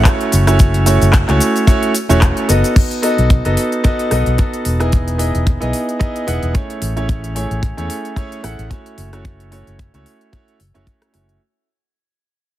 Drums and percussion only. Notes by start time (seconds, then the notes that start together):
0.05 kick, clap, closed hi-hat, shaker
0.21 closed hi-hat
0.32 open hi-hat, shaker
0.47 cross-stick, closed hi-hat, shaker
0.59 kick, closed hi-hat, shaker
0.74 closed hi-hat
0.86 open hi-hat, shaker
1.02 closed hi-hat, shaker
1.13 kick, clap, closed hi-hat, shaker
1.28 clap, closed hi-hat
1.40 open hi-hat, shaker
1.56 closed hi-hat, shaker
1.67 kick, closed hi-hat, shaker
1.83 closed hi-hat
1.95 open hi-hat, shaker
2.10 closed hi-hat, shaker
2.21 kick, clap, closed hi-hat, shaker
2.37 closed hi-hat
2.49 open hi-hat, shaker
2.64 closed hi-hat, shaker
2.76 kick, closed hi-hat, crash
2.91 closed hi-hat
3.03 open hi-hat
3.18 closed hi-hat
3.30 kick, closed hi-hat
3.45 closed hi-hat
3.57 open hi-hat
3.72 closed hi-hat
3.84 kick, closed hi-hat
3.99 closed hi-hat
4.11 cross-stick, open hi-hat
4.26 closed hi-hat
4.38 kick, closed hi-hat
4.53 closed hi-hat
4.65 open hi-hat
4.80 cross-stick, closed hi-hat
4.92 kick, closed hi-hat
5.08 closed hi-hat
5.19 open hi-hat
5.35 closed hi-hat
5.47 kick, closed hi-hat
5.62 closed hi-hat
5.73 open hi-hat
5.89 closed hi-hat
6.01 kick, closed hi-hat
6.16 closed hi-hat
6.28 open hi-hat
6.43 closed hi-hat
6.55 kick, closed hi-hat
6.70 closed hi-hat
6.82 open hi-hat
6.97 closed hi-hat
7.09 kick, closed hi-hat
7.24 closed hi-hat
7.36 open hi-hat
7.51 closed hi-hat
7.63 kick, closed hi-hat
7.78 closed hi-hat
7.90 open hi-hat
8.05 closed hi-hat
8.16 kick, closed hi-hat
8.32 closed hi-hat
8.44 cross-stick, open hi-hat
8.59 closed hi-hat
8.71 kick, closed hi-hat
8.86 closed hi-hat
8.98 open hi-hat
9.13 cross-stick, closed hi-hat
9.25 kick, closed hi-hat
9.40 closed hi-hat
9.52 open hi-hat
9.67 closed hi-hat
9.79 kick, closed hi-hat
9.94 closed hi-hat
10.06 open hi-hat
10.21 closed hi-hat
10.33 kick, closed hi-hat
10.48 closed hi-hat
10.60 open hi-hat
10.75 closed hi-hat
10.87 kick, closed hi-hat
11.02 cross-stick, closed hi-hat
11.14 open hi-hat
11.29 closed hi-hat